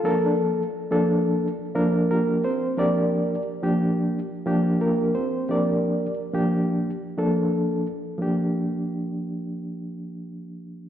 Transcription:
\new Staff \with { instrumentName = "Reed electric piano" } { \time 4/4 \key g \minor \tempo 4 = 88 << { bes'16 d'16 r2 r8 <bes f' g' bes'>8 <c' c''>8 | <g' d''>4 r2 <bes f' g' bes'>8 <c' c''>8 | <bes' d''>4 r2. | r1 | } \\ { <f bes d' a'>8. r8 <f bes d' a'>8. r8 <f bes d' bes'>4 r8 | <f bes d' bes'>8. r8 <f bes d' g'>8. r8 <f bes d' g'>4 r8 | <f bes d' g'>8. r8 <f bes d' g'>8. r8 <f bes d' a'>4 r8 | <f bes d' g'>1 | } >> }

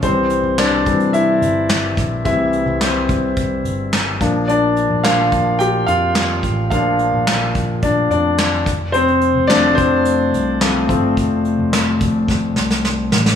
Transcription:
<<
  \new Staff \with { instrumentName = "Grand piano" } { \time 4/4 \key f \major \tempo 4 = 108 c''4 <d' d''>4 <e' e''>2 | <e' e''>4 <c' c''>2 r4 | <d' d''>4 <f' f''>4 <g' g''>8 <f' f''>4. | <f' f''>2 <d' d''>8 <d' d''>4 r8 |
<c' c''>4 <d' d''>8 <c' c''>2~ <c' c''>8~ | <c' c''>2. r4 | }
  \new Staff \with { instrumentName = "Grand piano" } { \time 4/4 \key f \major <e g c'>8 r4 <e g c'>8 r2 | <e g c'>8 r2. <f bes d'>8~ | <f bes d'>4 <f bes d'>8 r2 r8 | <f bes d'>4. r2 r8 |
r4 <f a c'>8 r4. <f a c'>8 <f a c'>8 | r1 | }
  \new Staff \with { instrumentName = "Picked electric bass" } { \clef bass \time 4/4 \key f \major c,8. c,8. c,4 g,,4 bes,,8 | c,8. c,8. c,4 g,,4 bes,,8~ | bes,,8. bes,,8. bes,,4 f,4 a,,8 | bes,,8. bes,,8. bes,,4 f,4 f,,8~ |
f,,8. f,,8. f,,4 c,4 g,,8 | f,,8. f,,8. f,,4 c,4 a,,8 | }
  \new DrumStaff \with { instrumentName = "Drums" } \drummode { \time 4/4 <hh bd>8 hh8 <hc hh sn>8 <hh bd>16 hh16 hh8 hh8 <hc hh sn>8 <hh bd sn>8 | <hh bd>8 hh8 <hc hh sn>8 <hh bd>8 <hh bd>8 hh8 <hc hh sn>8 <hh bd sn>8 | hh8 hh8 <hc hh sn>8 <hh bd>8 hh8 hh8 <hc hh sn>8 <hh bd>8 | <hh bd>8 hh8 <hc hh sn>8 <hh bd>8 <hh bd>8 hh8 <hc hh sn>8 <hh bd sn>8 |
hh16 hh16 hh8 <hc hh sn>8 <hh bd>8 hh8 hh8 <hc hh sn>8 <hh bd>8 | <hh bd>8 hh8 <hc hh sn>8 <hh bd>8 <bd sn>8 sn16 sn16 sn8 sn16 sn16 | }
>>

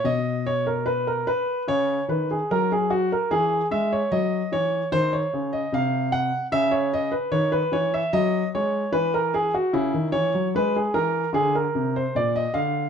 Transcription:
<<
  \new Staff \with { instrumentName = "Grand piano" } { \time 4/4 \key cis \dorian \tempo 4 = 74 dis''8 cis''16 ais'16 b'16 ais'16 b'8 cis''8 b'16 gis'16 ais'16 gis'16 fis'16 ais'16 | gis'8 e''16 cis''16 dis''8 cis''8 bis'16 cis''8 dis''16 eis''8 fis''8 | e''16 cis''16 dis''16 b'16 cis''16 b'16 cis''16 e''16 dis''8 cis''8 b'16 ais'16 gis'16 fis'16 | e'8 cis''8 b'16 gis'16 ais'8 gis'16 ais'8 bis'16 d''16 dis''16 eis''8 | }
  \new Staff \with { instrumentName = "Grand piano" } { \clef bass \time 4/4 \key cis \dorian b,2 cis8 dis8 fis4 | e8 gis8 fis8 e8 dis8 cis8 bis,4 | cis4 dis8 e8 fis8 gis8 e4 | cis16 dis16 e16 fis16 gis8 e8 d8 bis,8 ais,8 d8 | }
>>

